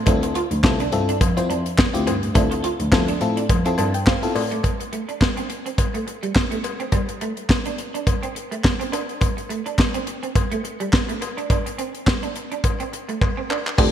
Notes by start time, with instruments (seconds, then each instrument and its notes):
0.06 cello D2, fm electric piano C4 E4 F4 A4, clean electric guitar D4, kick, closed hi-hat, cowbell
0.23 muted clean electric guitar stroke, closed hi-hat
0.35 clean electric guitar F4, closed hi-hat
0.51 cello D2, closed hi-hat
0.64 cello C2, fm electric piano C4 E4 F4 A4, kick, snare, clap, cowbell
0.80 clean electric guitar D4, closed hi-hat
0.92 cello G2, fm electric piano C4 E4 F4 A4, muted clean electric guitar stroke, closed hi-hat
1.09 clean electric guitar D4, closed hi-hat
1.21 cello F2, muted clean electric guitar stroke, kick, closed hi-hat, cowbell
1.37 fm electric piano C4 E4 F4 C5, clean electric guitar C4, closed hi-hat
1.50 cello F2, clean electric guitar D4, closed hi-hat
1.66 closed hi-hat
1.78 kick, snare, clap, cowbell
1.93 cello D2, fm electric piano C4 E4 F4 G4, closed hi-hat
2.07 cello G2, clean electric guitar C4, closed hi-hat, cowbell
2.23 cello A2, closed hi-hat
2.34 cello D2, fm electric piano C4 E4 F4 A4, clean electric guitar D4, kick, closed hi-hat, cowbell
2.51 muted clean electric guitar stroke, closed hi-hat
2.64 clean electric guitar F4, closed hi-hat
2.80 cello D2, closed hi-hat
2.92 cello F2, fm electric piano C4 E4 F4 A4, kick, snare, clap, cowbell
3.08 clean electric guitar D4, closed hi-hat
3.21 cello A2, fm electric piano C4 E4 F4 A4, muted clean electric guitar stroke, closed hi-hat
3.37 clean electric guitar D4, closed hi-hat
3.49 cello F2, muted clean electric guitar stroke, kick, closed hi-hat, cowbell
3.65 fm electric piano C4 E4 F4 A4, clean electric guitar C4, closed hi-hat
3.78 cello G2, clean electric guitar D4, fm electric piano A5, closed hi-hat, cowbell
3.94 fm electric piano G5, closed hi-hat
4.06 clean electric guitar C4, fm electric piano F5, kick, snare, clap, cowbell
4.22 fm electric piano C4 E4 F4 A4, closed hi-hat
4.35 cello A2, fm electric piano D5, muted clean electric guitar stroke, open hi-hat, cowbell
4.51 clean electric guitar A3, closed hi-hat
4.63 kick, closed hi-hat, cowbell
4.80 muted clean electric guitar stroke, closed hi-hat
4.93 clean electric guitar A3, closed hi-hat
5.09 clean electric guitar D4, closed hi-hat
5.21 kick, snare, clap, cowbell
5.37 clean electric guitar C4, closed hi-hat
5.50 muted clean electric guitar stroke, closed hi-hat
5.66 clean electric guitar C4, closed hi-hat
5.78 kick, closed hi-hat, cowbell
5.94 clean electric guitar A3, closed hi-hat
6.07 muted clean electric guitar stroke, closed hi-hat
6.23 clean electric guitar G3, closed hi-hat
6.35 kick, snare, clap, cowbell
6.51 clean electric guitar A3, closed hi-hat
6.64 muted clean electric guitar stroke, closed hi-hat, cowbell
6.80 clean electric guitar C4, closed hi-hat
6.92 clean electric guitar G3, kick, closed hi-hat, cowbell
7.09 muted clean electric guitar stroke, closed hi-hat
7.21 clean electric guitar A3, closed hi-hat
7.37 closed hi-hat
7.49 kick, snare, clap, cowbell
7.65 clean electric guitar D4, closed hi-hat
7.78 muted clean electric guitar stroke, closed hi-hat
7.94 clean electric guitar D4, closed hi-hat
8.07 kick, closed hi-hat, cowbell
8.23 clean electric guitar C4, closed hi-hat
8.35 muted clean electric guitar stroke, closed hi-hat
8.51 clean electric guitar A3, closed hi-hat
8.64 muted clean electric guitar stroke, kick, snare, clap, cowbell
8.80 clean electric guitar C4, closed hi-hat
8.92 clean electric guitar D4, closed hi-hat, cowbell
9.09 closed hi-hat
9.21 kick, closed hi-hat, cowbell
9.37 muted clean electric guitar stroke, closed hi-hat
9.49 clean electric guitar A3, closed hi-hat
9.66 clean electric guitar D4, closed hi-hat
9.78 kick, snare, clap, cowbell
9.94 clean electric guitar C4, closed hi-hat
10.07 muted clean electric guitar stroke, closed hi-hat
10.23 clean electric guitar C4, closed hi-hat
10.35 kick, closed hi-hat, cowbell
10.52 clean electric guitar A3, closed hi-hat
10.64 muted clean electric guitar stroke, closed hi-hat
10.80 clean electric guitar G3, closed hi-hat
10.93 kick, snare, clap, cowbell
11.09 clean electric guitar A3, closed hi-hat
11.21 muted clean electric guitar stroke, closed hi-hat, cowbell
11.37 clean electric guitar D4, closed hi-hat
11.50 clean electric guitar D4, kick, closed hi-hat, cowbell
11.66 muted clean electric guitar stroke, closed hi-hat
11.78 clean electric guitar C4, closed hi-hat
11.95 closed hi-hat
12.07 kick, snare, clap, cowbell
12.23 clean electric guitar D4, closed hi-hat
12.35 muted clean electric guitar stroke, closed hi-hat
12.52 clean electric guitar D4, closed hi-hat
12.64 kick, closed hi-hat, cowbell
12.80 clean electric guitar C4, closed hi-hat
12.93 muted clean electric guitar stroke, closed hi-hat
13.09 clean electric guitar A3, closed hi-hat
13.21 muted clean electric guitar stroke, kick, clap, cowbell
13.37 clean electric guitar C4
13.50 clean electric guitar D4, clap, cowbell
13.67 clap
13.78 cello D2, fm electric piano C4 D4 F4 A4, clean electric guitar G4, kick, crash, cowbell